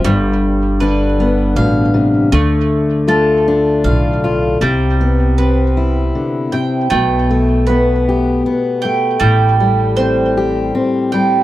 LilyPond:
<<
  \new Staff \with { instrumentName = "Mandolin" } { \time 3/4 \key g \mixolydian \tempo 4 = 78 g4 b'4 f''4 | a4 a'4 f''4 | <g g''>4 b'4. g''8 | <a g''>4 b'4. g''8 |
<g g''>4 c''4. g''8 | }
  \new Staff \with { instrumentName = "Steel-string acoustic guitar" } { \time 3/4 \key g \mixolydian << { r4 d'8 b4. | r4 f'8 d'8 f'8 f'8 | r8 b8 c'8 e'4. | r8 a8 b8 g'8 b8 a8 |
r8 g8 c'8 g'8 c'8 g8 | } \\ { g,4 d4 b,8 c8 | d4 a4 a,4 | c2 d8 c8 | b,2. |
a,2. | } >> }
  \new Staff \with { instrumentName = "Upright bass" } { \clef bass \time 3/4 \key g \mixolydian g,,2 a,,4 | d,2 b,,4 | c,2 r4 | b,,2 r4 |
a,,2 r4 | }
>>